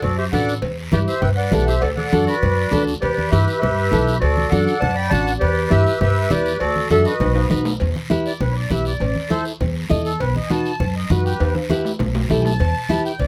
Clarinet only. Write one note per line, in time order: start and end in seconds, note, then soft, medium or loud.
0.03 0.17 F#4 medium
0.19 0.25 G4 medium
0.33 0.54 A4 medium
0.93 1.00 G4 medium
1.08 1.22 G4 medium
1.23 1.30 B4 medium
1.38 1.66 B4 medium
1.68 1.82 G4 medium
1.83 1.89 A4 medium
1.97 2.25 A4 medium
2.27 2.83 F#4 medium
3.01 3.29 G4 medium
3.31 3.59 G4 medium
3.61 4.17 G4 medium
4.20 4.48 F#4 medium
4.49 4.78 A4 medium
4.79 4.94 D5 medium
4.94 5.09 D5 medium
5.10 5.31 D5 medium
5.39 5.68 G4 medium
5.71 5.99 G4 medium
6.00 6.29 G4 medium
6.30 6.59 G4 medium
6.59 6.88 F#4 medium
6.91 7.05 A4 medium
7.06 7.48 F#4 medium